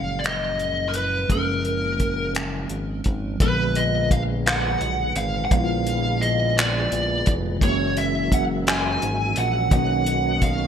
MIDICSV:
0, 0, Header, 1, 6, 480
1, 0, Start_track
1, 0, Tempo, 701754
1, 886, Time_signature, 6, 3, 24, 8
1, 7298, End_track
2, 0, Start_track
2, 0, Title_t, "Lead electric guitar"
2, 0, Program_c, 0, 29
2, 0, Note_on_c, 0, 77, 69
2, 130, Note_on_c, 0, 74, 52
2, 134, Note_off_c, 0, 77, 0
2, 172, Note_off_c, 0, 74, 0
2, 181, Note_on_c, 0, 75, 75
2, 606, Note_on_c, 0, 70, 52
2, 619, Note_off_c, 0, 75, 0
2, 650, Note_off_c, 0, 70, 0
2, 653, Note_on_c, 0, 71, 65
2, 897, Note_off_c, 0, 71, 0
2, 901, Note_on_c, 0, 70, 62
2, 1587, Note_off_c, 0, 70, 0
2, 2340, Note_on_c, 0, 71, 89
2, 2574, Note_on_c, 0, 75, 81
2, 2580, Note_off_c, 0, 71, 0
2, 2794, Note_off_c, 0, 75, 0
2, 2818, Note_on_c, 0, 77, 92
2, 2881, Note_off_c, 0, 77, 0
2, 3055, Note_on_c, 0, 78, 96
2, 3504, Note_off_c, 0, 78, 0
2, 3534, Note_on_c, 0, 77, 85
2, 3724, Note_off_c, 0, 77, 0
2, 3727, Note_on_c, 0, 78, 71
2, 3771, Note_off_c, 0, 78, 0
2, 3775, Note_on_c, 0, 77, 97
2, 4251, Note_on_c, 0, 75, 92
2, 4265, Note_off_c, 0, 77, 0
2, 4495, Note_off_c, 0, 75, 0
2, 4498, Note_on_c, 0, 74, 88
2, 5005, Note_off_c, 0, 74, 0
2, 5226, Note_on_c, 0, 73, 101
2, 5458, Note_off_c, 0, 73, 0
2, 5461, Note_on_c, 0, 76, 88
2, 5701, Note_off_c, 0, 76, 0
2, 5703, Note_on_c, 0, 78, 101
2, 5766, Note_off_c, 0, 78, 0
2, 5940, Note_on_c, 0, 80, 98
2, 6416, Note_off_c, 0, 80, 0
2, 6419, Note_on_c, 0, 78, 97
2, 6649, Note_off_c, 0, 78, 0
2, 6657, Note_on_c, 0, 78, 105
2, 7130, Note_off_c, 0, 78, 0
2, 7133, Note_on_c, 0, 77, 93
2, 7298, Note_off_c, 0, 77, 0
2, 7298, End_track
3, 0, Start_track
3, 0, Title_t, "Tonewheel organ"
3, 0, Program_c, 1, 16
3, 2327, Note_on_c, 1, 68, 61
3, 2330, Note_on_c, 1, 46, 67
3, 2331, Note_on_c, 1, 71, 62
3, 2332, Note_on_c, 1, 53, 58
3, 5181, Note_off_c, 1, 46, 0
3, 5181, Note_off_c, 1, 71, 0
3, 5182, Note_off_c, 1, 53, 0
3, 5205, Note_on_c, 1, 54, 68
3, 5205, Note_on_c, 1, 76, 74
3, 5207, Note_on_c, 1, 70, 62
3, 5209, Note_on_c, 1, 66, 65
3, 6620, Note_off_c, 1, 68, 0
3, 6632, Note_off_c, 1, 54, 0
3, 6632, Note_off_c, 1, 76, 0
3, 6645, Note_on_c, 1, 73, 66
3, 6646, Note_on_c, 1, 47, 69
3, 6646, Note_on_c, 1, 75, 78
3, 7298, Note_off_c, 1, 47, 0
3, 7298, Note_off_c, 1, 66, 0
3, 7298, Note_off_c, 1, 70, 0
3, 7298, Note_off_c, 1, 73, 0
3, 7298, Note_off_c, 1, 75, 0
3, 7298, End_track
4, 0, Start_track
4, 0, Title_t, "Tine electric piano"
4, 0, Program_c, 2, 4
4, 0, Control_c, 2, 64, 127
4, 0, Note_on_c, 2, 46, 48
4, 0, Note_on_c, 2, 53, 55
4, 0, Note_on_c, 2, 56, 49
4, 0, Note_on_c, 2, 61, 59
4, 852, Note_off_c, 2, 53, 0
4, 860, Note_off_c, 2, 56, 0
4, 870, Note_off_c, 2, 46, 0
4, 875, Note_on_c, 2, 53, 54
4, 879, Note_off_c, 2, 61, 0
4, 893, Note_on_c, 2, 56, 49
4, 914, Note_on_c, 2, 58, 49
4, 930, Note_on_c, 2, 61, 57
4, 2293, Note_off_c, 2, 53, 0
4, 2303, Note_off_c, 2, 56, 0
4, 2309, Note_on_c, 2, 53, 58
4, 2313, Note_off_c, 2, 58, 0
4, 2321, Note_off_c, 2, 61, 0
4, 2329, Note_on_c, 2, 56, 57
4, 2336, Control_c, 2, 64, 0
4, 2348, Note_on_c, 2, 59, 57
4, 2369, Note_on_c, 2, 50, 74
4, 2448, Control_c, 2, 64, 127
4, 3730, Note_off_c, 2, 53, 0
4, 3741, Note_off_c, 2, 56, 0
4, 3750, Note_off_c, 2, 59, 0
4, 3752, Note_on_c, 2, 53, 60
4, 3760, Note_off_c, 2, 50, 0
4, 3771, Note_on_c, 2, 56, 61
4, 3789, Note_on_c, 2, 59, 58
4, 3810, Note_on_c, 2, 64, 56
4, 3833, Note_off_c, 2, 64, 0
4, 3854, Note_on_c, 2, 65, 71
4, 5172, Note_off_c, 2, 53, 0
4, 5181, Note_off_c, 2, 56, 0
4, 5190, Note_on_c, 2, 52, 63
4, 5191, Note_off_c, 2, 59, 0
4, 5212, Note_on_c, 2, 56, 58
4, 5216, Control_c, 2, 64, 0
4, 5223, Note_off_c, 2, 65, 0
4, 5230, Note_on_c, 2, 58, 63
4, 5249, Note_on_c, 2, 61, 76
4, 5337, Control_c, 2, 64, 127
4, 6611, Note_off_c, 2, 52, 0
4, 6618, Note_on_c, 2, 51, 68
4, 6622, Note_off_c, 2, 56, 0
4, 6631, Note_off_c, 2, 58, 0
4, 6638, Note_on_c, 2, 54, 56
4, 6640, Note_off_c, 2, 61, 0
4, 6654, Control_c, 2, 64, 0
4, 6659, Note_on_c, 2, 58, 56
4, 6680, Note_on_c, 2, 61, 73
4, 6777, Control_c, 2, 64, 127
4, 7298, Note_off_c, 2, 51, 0
4, 7298, Note_off_c, 2, 54, 0
4, 7298, Note_off_c, 2, 58, 0
4, 7298, Note_off_c, 2, 61, 0
4, 7298, End_track
5, 0, Start_track
5, 0, Title_t, "Analog synth bass"
5, 0, Program_c, 3, 38
5, 0, Note_on_c, 3, 30, 97
5, 860, Note_off_c, 3, 30, 0
5, 892, Note_on_c, 3, 30, 97
5, 1822, Note_off_c, 3, 30, 0
5, 1847, Note_on_c, 3, 32, 85
5, 2063, Note_off_c, 3, 32, 0
5, 2095, Note_on_c, 3, 32, 94
5, 2307, Note_off_c, 3, 32, 0
5, 2331, Note_on_c, 3, 34, 96
5, 3261, Note_off_c, 3, 34, 0
5, 3293, Note_on_c, 3, 35, 88
5, 3506, Note_off_c, 3, 35, 0
5, 3528, Note_on_c, 3, 32, 97
5, 3743, Note_off_c, 3, 32, 0
5, 3773, Note_on_c, 3, 34, 113
5, 4703, Note_off_c, 3, 34, 0
5, 4734, Note_on_c, 3, 34, 89
5, 4947, Note_off_c, 3, 34, 0
5, 4980, Note_on_c, 3, 29, 100
5, 5190, Note_off_c, 3, 29, 0
5, 5210, Note_on_c, 3, 30, 104
5, 6141, Note_off_c, 3, 30, 0
5, 6178, Note_on_c, 3, 32, 81
5, 6389, Note_off_c, 3, 32, 0
5, 6414, Note_on_c, 3, 34, 96
5, 6626, Note_off_c, 3, 34, 0
5, 6646, Note_on_c, 3, 35, 100
5, 7298, Note_off_c, 3, 35, 0
5, 7298, End_track
6, 0, Start_track
6, 0, Title_t, "Drums"
6, 165, Note_on_c, 9, 42, 59
6, 176, Note_on_c, 9, 26, 95
6, 233, Note_off_c, 9, 42, 0
6, 245, Note_off_c, 9, 26, 0
6, 407, Note_on_c, 9, 42, 49
6, 475, Note_off_c, 9, 42, 0
6, 641, Note_on_c, 9, 42, 68
6, 709, Note_off_c, 9, 42, 0
6, 887, Note_on_c, 9, 36, 97
6, 888, Note_on_c, 9, 42, 59
6, 955, Note_off_c, 9, 36, 0
6, 956, Note_off_c, 9, 42, 0
6, 1127, Note_on_c, 9, 42, 51
6, 1195, Note_off_c, 9, 42, 0
6, 1366, Note_on_c, 9, 42, 51
6, 1368, Note_on_c, 9, 36, 71
6, 1434, Note_off_c, 9, 42, 0
6, 1436, Note_off_c, 9, 36, 0
6, 1606, Note_on_c, 9, 42, 60
6, 1617, Note_on_c, 9, 26, 99
6, 1674, Note_off_c, 9, 42, 0
6, 1685, Note_off_c, 9, 26, 0
6, 1843, Note_on_c, 9, 42, 49
6, 1911, Note_off_c, 9, 42, 0
6, 2081, Note_on_c, 9, 42, 70
6, 2092, Note_on_c, 9, 36, 80
6, 2149, Note_off_c, 9, 42, 0
6, 2161, Note_off_c, 9, 36, 0
6, 2327, Note_on_c, 9, 36, 111
6, 2327, Note_on_c, 9, 42, 60
6, 2396, Note_off_c, 9, 36, 0
6, 2396, Note_off_c, 9, 42, 0
6, 2567, Note_on_c, 9, 42, 58
6, 2636, Note_off_c, 9, 42, 0
6, 2811, Note_on_c, 9, 36, 87
6, 2813, Note_on_c, 9, 42, 59
6, 2879, Note_off_c, 9, 36, 0
6, 2881, Note_off_c, 9, 42, 0
6, 3053, Note_on_c, 9, 42, 71
6, 3065, Note_on_c, 9, 39, 117
6, 3122, Note_off_c, 9, 42, 0
6, 3133, Note_off_c, 9, 39, 0
6, 3289, Note_on_c, 9, 42, 60
6, 3358, Note_off_c, 9, 42, 0
6, 3527, Note_on_c, 9, 42, 85
6, 3595, Note_off_c, 9, 42, 0
6, 3770, Note_on_c, 9, 36, 109
6, 3771, Note_on_c, 9, 42, 67
6, 3838, Note_off_c, 9, 36, 0
6, 3840, Note_off_c, 9, 42, 0
6, 4012, Note_on_c, 9, 42, 61
6, 4081, Note_off_c, 9, 42, 0
6, 4258, Note_on_c, 9, 42, 57
6, 4327, Note_off_c, 9, 42, 0
6, 4499, Note_on_c, 9, 42, 74
6, 4511, Note_on_c, 9, 39, 116
6, 4568, Note_off_c, 9, 42, 0
6, 4579, Note_off_c, 9, 39, 0
6, 4732, Note_on_c, 9, 42, 58
6, 4801, Note_off_c, 9, 42, 0
6, 4966, Note_on_c, 9, 42, 85
6, 4974, Note_on_c, 9, 36, 96
6, 5034, Note_off_c, 9, 42, 0
6, 5042, Note_off_c, 9, 36, 0
6, 5208, Note_on_c, 9, 36, 107
6, 5212, Note_on_c, 9, 42, 68
6, 5276, Note_off_c, 9, 36, 0
6, 5280, Note_off_c, 9, 42, 0
6, 5450, Note_on_c, 9, 42, 59
6, 5518, Note_off_c, 9, 42, 0
6, 5689, Note_on_c, 9, 36, 87
6, 5693, Note_on_c, 9, 42, 61
6, 5758, Note_off_c, 9, 36, 0
6, 5761, Note_off_c, 9, 42, 0
6, 5930, Note_on_c, 9, 42, 76
6, 5941, Note_on_c, 9, 39, 116
6, 5998, Note_off_c, 9, 42, 0
6, 6010, Note_off_c, 9, 39, 0
6, 6170, Note_on_c, 9, 42, 63
6, 6239, Note_off_c, 9, 42, 0
6, 6401, Note_on_c, 9, 42, 86
6, 6470, Note_off_c, 9, 42, 0
6, 6644, Note_on_c, 9, 36, 109
6, 6644, Note_on_c, 9, 42, 60
6, 6713, Note_off_c, 9, 36, 0
6, 6713, Note_off_c, 9, 42, 0
6, 6884, Note_on_c, 9, 42, 60
6, 6953, Note_off_c, 9, 42, 0
6, 7125, Note_on_c, 9, 42, 60
6, 7126, Note_on_c, 9, 36, 87
6, 7193, Note_off_c, 9, 42, 0
6, 7195, Note_off_c, 9, 36, 0
6, 7298, End_track
0, 0, End_of_file